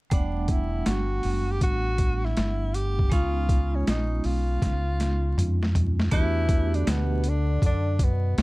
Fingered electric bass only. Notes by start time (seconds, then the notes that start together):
0.11 E1
0.87 G1
1.24 F#1
1.61 A1
2.37 G1
3.12 C#2
3.88 A#1
4.25 B1
4.62 C#2
5.37 F2
6.13 E2
6.87 D2
7.62 F#2
8.38 D2